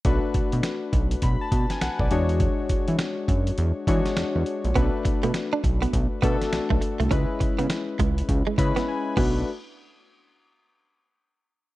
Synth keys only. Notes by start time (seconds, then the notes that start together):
0.05 A3 D4 F#4 B4
1.23 B5
1.41 A5
1.71 G#5
1.82 F#5
2.00 D5
2.11 G#3 D4 F#4 C#5
3.87 G#3 D4 F#4 C#5
4.76 A3 C#4 F#4 B4
4.82 D4
6.23 A3 D4 F#4 A4
7.11 G#3 C#4 E4 B4
8.58 G#3 C#4 E4 B4 B5
8.88 G#5
9.17 A3 D4 F#4 B4